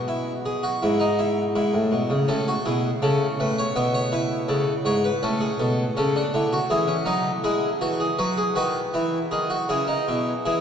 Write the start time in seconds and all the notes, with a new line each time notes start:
Already playing: B2
0.08 E4
0.46 G#4
0.63 F#4
0.82 G#2 E4
1.00 D#4
1.19 E4
1.56 G#2 E4
1.74 A2
1.92 B2
2.10 C#3
2.28 A2 C#4 A4
2.48 F#4
2.65 B2 E4 G#4
3.02 C#3 C#4 A4
3.40 A2 B4
3.58 C#5
3.76 B2 B3 E5
3.94 C#5
4.12 E4 B4
4.49 C#3 A4
4.85 G#2 C#5
5.04 B4
5.23 A2 C#4 A4
5.41 G#4
5.59 B2 A4
5.97 C#3 C#4 A4
6.16 D4
6.34 D3 E4
6.53 F#4
6.70 E3 E4 G#4
6.88 C#4
7.06 F#3 D#4 B4
7.44 G#3 E4 G#4
7.81 E3 F#4
8.00 G#4
8.19 F#3 F#4 B4
8.37 G#4
8.55 D#3 F#4 B4
8.94 E3 E4
9.31 D#3 G#4
9.50 F#4
9.69 C#3 E4 G#4
9.88 D#4
10.08 B2 E4
10.46 E3 E4 G#4